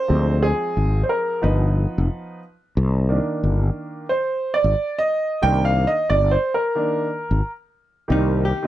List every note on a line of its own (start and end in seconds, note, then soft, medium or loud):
0.00 0.44 C5 loud
0.08 0.51 D2 loud
0.08 1.38 F3 medium
0.08 1.38 G#3 medium
0.08 1.39 C4 medium
0.43 1.00 G#4 medium
0.77 1.02 G#1 medium
1.03 1.09 C5 medium
1.09 1.44 A#4 medium
1.42 1.85 G1 loud
1.42 2.38 F3 medium
1.42 2.39 B3 soft
1.42 2.39 D#4 medium
1.42 2.39 B4 medium
1.98 2.07 F1 medium
2.77 3.18 C2 loud
3.09 4.05 D#3 medium
3.09 4.05 A#3 soft
3.09 4.06 D4 medium
3.43 3.69 G1 medium
4.09 4.55 C5 medium
4.54 5.00 D5 medium
4.64 4.74 G#1 medium
4.98 5.44 D#5 loud
5.42 5.85 C2 loud
5.42 5.90 D#3 medium
5.42 5.90 A#3 medium
5.42 5.91 D4 medium
5.42 5.63 G5 loud
5.65 5.88 F5 medium
5.87 6.08 D#5 medium
6.10 6.35 G1 loud
6.10 6.32 D5 medium
6.31 6.52 C5 medium
6.54 7.50 A#4 medium
6.75 7.06 D#3 medium
6.75 7.06 A#3 soft
6.75 7.06 D4 medium
7.31 7.40 G#1 medium
8.08 8.51 C2 medium
8.08 8.48 D#3 medium
8.08 8.49 G3 medium
8.08 8.49 A#3 medium
8.08 8.49 C4 medium
8.08 8.42 D#4 medium
8.08 8.49 G4 medium
8.45 8.67 G4 medium
8.63 8.67 A#2 medium
8.63 8.67 D#3 medium